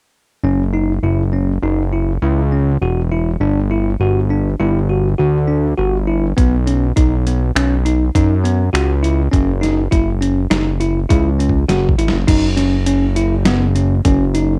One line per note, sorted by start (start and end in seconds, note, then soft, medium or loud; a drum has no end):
0.44 0.99 F#1 medium
0.44 0.62 C#4 medium
0.74 0.92 D#4 medium
1.03 1.59 F#1 medium
1.03 1.22 E4 medium
1.33 1.51 C#4 medium
1.62 2.18 F#1 medium
1.62 1.82 D#4 medium
1.93 2.11 E4 medium
2.22 2.77 C#2 medium
2.22 2.41 E4 medium
2.52 2.71 C#4 medium
2.82 3.37 E1 medium
2.82 3.00 F#4 medium
3.12 3.30 E4 medium
3.40 3.96 G1 medium
3.40 3.59 D4 medium
3.71 3.89 E4 medium
4.00 4.55 G1 medium
4.00 4.19 F#4 medium
4.30 4.49 D4 medium
4.60 5.15 G1 medium
4.60 4.78 E4 medium
4.89 5.08 F#4 medium
5.18 5.74 D2 medium
5.18 5.37 F#4 medium
5.47 5.66 D4 medium
5.77 6.33 G1 medium
5.77 5.96 F#4 medium
6.07 6.26 E4 medium
6.37 6.92 B1 medium
6.37 6.55 B3 medium
6.37 kick medium
6.37 closed hi-hat medium
6.67 6.85 C#4 medium
6.67 closed hi-hat soft
6.96 7.52 B1 medium
6.96 7.14 D#4 medium
6.96 kick medium
6.96 closed hi-hat medium
7.26 7.45 B3 medium
7.26 closed hi-hat medium
7.55 8.10 B1 medium
7.55 7.74 C#4 medium
7.55 finger snap medium
7.55 closed hi-hat medium
7.85 8.03 D#4 medium
7.85 closed hi-hat soft
8.15 8.70 F#2 medium
8.15 8.33 D#4 medium
8.15 kick medium
8.15 closed hi-hat medium
8.44 8.62 B3 medium
8.44 closed hi-hat soft
8.73 9.28 C#2 medium
8.73 8.92 F#4 medium
8.73 finger snap medium
8.73 closed hi-hat medium
9.03 9.21 E4 medium
9.03 closed hi-hat soft
9.32 9.88 F#1 medium
9.32 9.50 C#4 medium
9.32 kick medium
9.32 closed hi-hat medium
9.61 9.80 D#4 medium
9.61 snare soft
9.61 closed hi-hat soft
9.91 10.47 F#1 medium
9.91 10.10 E4 medium
9.91 kick medium
9.91 closed hi-hat medium
10.21 10.39 C#4 medium
10.21 closed hi-hat medium
10.50 11.06 F#1 medium
10.50 10.69 D#4 medium
10.50 snare medium
10.50 closed hi-hat medium
10.80 10.98 E4 medium
10.80 closed hi-hat soft
11.09 11.65 C#2 medium
11.09 11.28 E4 medium
11.09 kick medium
11.09 closed hi-hat medium
11.09 high tom soft
11.39 11.57 C#4 medium
11.39 closed hi-hat soft
11.49 kick medium
11.68 11.95 F#1 medium
11.68 11.87 F#4 medium
11.68 snare medium
11.68 closed hi-hat medium
11.89 kick medium
11.98 12.12 G#1 medium
11.98 12.17 E4 medium
11.98 closed hi-hat medium
12.08 snare medium
12.12 12.26 F#1 medium
12.28 14.01 F#1 medium
12.28 12.46 D#4 medium
12.28 kick medium
12.28 closed hi-hat medium
12.28 crash medium
12.56 12.75 C#4 medium
12.56 snare soft
12.56 closed hi-hat medium
12.86 13.05 C#4 medium
12.86 closed hi-hat medium
13.16 13.35 E4 medium
13.16 closed hi-hat medium
13.45 13.64 B3 medium
13.45 snare medium
13.45 closed hi-hat medium
13.75 13.94 C#4 medium
13.75 closed hi-hat soft
14.05 14.59 F#1 medium
14.05 14.23 C#4 medium
14.05 kick medium
14.05 closed hi-hat medium
14.35 14.53 D#4 medium
14.35 closed hi-hat medium